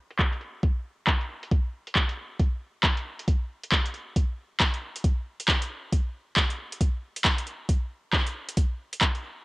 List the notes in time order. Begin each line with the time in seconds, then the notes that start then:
0.10 closed hi-hat
0.19 kick, clap
0.33 closed hi-hat
0.41 closed hi-hat
0.63 kick, closed hi-hat
1.07 kick, clap
1.21 closed hi-hat
1.43 closed hi-hat
1.51 kick, closed hi-hat
1.87 closed hi-hat
1.95 kick, clap
2.09 closed hi-hat
2.40 kick, closed hi-hat
2.84 kick, clap
2.97 closed hi-hat
3.19 closed hi-hat
3.28 kick, closed hi-hat
3.63 closed hi-hat
3.72 kick, clap
3.86 closed hi-hat
3.94 closed hi-hat
4.16 kick, closed hi-hat
4.60 kick, clap
4.74 closed hi-hat
4.96 closed hi-hat
5.04 kick, closed hi-hat
5.40 closed hi-hat
5.48 kick, clap
5.62 closed hi-hat
5.93 kick, closed hi-hat
6.37 kick, clap
6.50 closed hi-hat
6.72 closed hi-hat
6.81 kick, closed hi-hat
7.16 closed hi-hat
7.25 kick, clap
7.38 closed hi-hat
7.47 closed hi-hat
7.69 kick, closed hi-hat
8.13 kick, clap
8.27 closed hi-hat
8.49 closed hi-hat
8.57 kick, closed hi-hat
8.93 closed hi-hat
9.01 kick, clap
9.15 closed hi-hat